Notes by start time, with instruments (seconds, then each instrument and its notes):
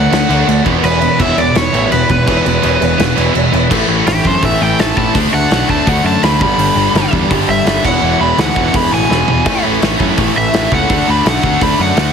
Already playing: distorted electric guitar D3 F#3 A3 D4, overdriven electric guitar F#5
0.11 picked electric bass D2, distorted electric guitar D3 F#3 A3 D4, snare, crash
0.29 picked electric bass D2, distorted electric guitar D3 F#3 A3 D4, crash
0.47 picked electric bass D2, distorted electric guitar D3 F#3 A3 D4, crash
0.65 picked electric bass E1, distorted electric guitar E2 B2 E3 G#3 B3 E4, kick, crash
0.83 picked electric bass E1, distorted electric guitar E2 B2 E3 G#3 B3 E4, overdriven electric guitar B4, crash
1.01 distorted electric guitar E2 B2 E3 G#3 B3 E4, crash
1.19 picked electric bass E1, distorted electric guitar E2 B2 E3 G#3 B3 E4, overdriven electric guitar E5, kick, crash
1.37 picked electric bass E1, distorted electric guitar E2 B2 E3 G#3 B3 E4, overdriven electric guitar D5, crash
1.55 picked electric bass E1, distorted electric guitar E2 B2 E3 G#3 B3 E4, overdriven electric guitar C#5, snare, crash
1.73 picked electric bass A1, distorted electric guitar E2 B2 E3 G#3 B3 E4, crash
1.91 picked electric bass E1, distorted electric guitar E2 B2 E3 G#3 B3 E4, overdriven electric guitar B4, crash
2.09 picked electric bass E1, distorted electric guitar E2 B2 E3 G#3 B3 E4, overdriven electric guitar B4, kick, crash
2.27 picked electric bass E1, distorted electric guitar E2 B2 E3 G#3 B3 E4, kick, crash
2.45 picked electric bass E1, distorted electric guitar E2 B2 E3 G#3 B3 E4, crash
2.62 picked electric bass E1, distorted electric guitar E2 B2 E3 G#3 B3 E4, crash
2.80 picked electric bass E1, distorted electric guitar E2 B2 E3 G#3 B3 E4, crash
2.98 picked electric bass E1, distorted electric guitar E2 B2 E3 G#3 B3 E4, snare, crash
3.16 picked electric bass E1, distorted electric guitar E2 B2 E3 G#3 B3 E4, crash
3.35 picked electric bass E1, distorted electric guitar E2 B2 E3 G#3 B3 E4, crash
3.52 picked electric bass E1, distorted electric guitar E2 B2 E3 G#3 B3 E4, crash
3.70 picked electric bass A1, distorted electric guitar A2 E3 A3 C#4 E4, kick, crash
3.89 picked electric bass A1, distorted electric guitar A2 E3 A3
4.06 picked electric bass A1, distorted electric guitar A2 E3 A3, overdriven electric guitar G4, snare, open hi-hat
4.24 picked electric bass F#2, distorted electric guitar A2 E3 A3, overdriven electric guitar C5, kick
4.42 picked electric bass A1, distorted electric guitar A2 E3 A3, overdriven electric guitar E5, kick, open hi-hat
4.60 picked electric bass A1, distorted electric guitar A2 E3 A3, overdriven electric guitar G5
4.79 picked electric bass A1, distorted electric guitar A2 E3 A3, overdriven electric guitar A5, snare, open hi-hat
4.96 picked electric bass A1, distorted electric guitar A2 E3 A3 C#4 E4, overdriven electric guitar A5, kick
5.15 picked electric bass D2, distorted electric guitar D3 F#3 A3 D4, kick, open hi-hat
5.33 picked electric bass D2, distorted electric guitar D3 A3 D4, overdriven electric guitar F#5
5.50 picked electric bass B1, distorted electric guitar D3 A3 D4, snare, open hi-hat
5.69 picked electric bass D2, distorted electric guitar D3 A3 D4, overdriven electric guitar A5, kick
5.86 picked electric bass D2, distorted electric guitar D3 A3 D4, overdriven electric guitar F#5, kick, open hi-hat
6.04 picked electric bass F#2, distorted electric guitar D3 A3 D4, overdriven electric guitar A5
6.22 picked electric bass D2, distorted electric guitar D3 A3 D4, overdriven electric guitar B5, snare, open hi-hat
6.40 picked electric bass G1, distorted electric guitar G2 D3 G3 B3 D4, overdriven electric guitar B5, kick
6.58 picked electric bass G1, distorted electric guitar G2 D3 G3, open hi-hat
6.76 picked electric bass G1, distorted electric guitar G2 D3 G3
6.93 picked electric bass G1, distorted electric guitar G2 D3 G3, snare, open hi-hat
7.12 picked electric bass E2, distorted electric guitar G2 D3 G3, kick
7.30 picked electric bass G1, distorted electric guitar G2 D3 G3, kick, open hi-hat
7.48 picked electric bass G1, distorted electric guitar G2 D3 G3, overdriven electric guitar E5
7.66 picked electric bass G1, distorted electric guitar G2 D3 G3 B3 D4, snare, open hi-hat
7.83 picked electric bass E1, distorted electric guitar E2 B2 E3 G#3 B3 E4, overdriven electric guitar F#5, kick, crash
8.02 picked electric bass E1, distorted electric guitar E2 B2 E3
8.20 picked electric bass E1, distorted electric guitar E2 B2 E3, overdriven electric guitar B5
8.38 picked electric bass D2, distorted electric guitar E2 B2 E3, overdriven electric guitar F#5, snare, open hi-hat
8.56 picked electric bass E1, distorted electric guitar E2 B2 E3, kick
8.73 picked electric bass E1, distorted electric guitar E2 B2 E3, overdriven electric guitar B5, kick, open hi-hat
8.92 picked electric bass A1, distorted electric guitar E2 B2 E3, overdriven electric guitar G#5
9.09 picked electric bass E1, distorted electric guitar E2 B2 E3 G#3 B3 E4, snare
9.27 picked electric bass E1, distorted electric guitar E2 B2 E3, floor tom
9.45 picked electric bass A1, distorted electric guitar A2 E3 A3 C#4 E4, kick, open hi-hat, crash
9.63 picked electric bass A1, distorted electric guitar A2 E3 A3
9.81 picked electric bass A1, distorted electric guitar A2 E3 A3, snare, open hi-hat
9.99 picked electric bass F#2, distorted electric guitar A2 E3 A3, kick
10.17 picked electric bass A1, distorted electric guitar A2 E3 A3, kick, open hi-hat
10.35 picked electric bass A1, distorted electric guitar A2 E3 A3, overdriven electric guitar E5
10.53 picked electric bass A1, distorted electric guitar A2 E3 A3, snare, open hi-hat
10.71 picked electric bass C#2, distorted electric guitar A2 E3 A3 C#4 E4, overdriven electric guitar F#5, kick
10.88 picked electric bass D2, distorted electric guitar D3 F#3 A3 D4, kick, open hi-hat
11.07 picked electric bass D2, distorted electric guitar D3 A3 D4, overdriven electric guitar B5
11.25 picked electric bass B1, distorted electric guitar D3 A3 D4, overdriven electric guitar F#5, snare, open hi-hat
11.43 picked electric bass D2, distorted electric guitar D3 A3 D4, kick
11.61 picked electric bass D2, distorted electric guitar D3 A3 D4, overdriven electric guitar B5, kick, open hi-hat
11.79 picked electric bass F#2, distorted electric guitar D3 A3 D4, overdriven electric guitar F#5
11.97 picked electric bass D2, distorted electric guitar D3 A3 D4, snare, open hi-hat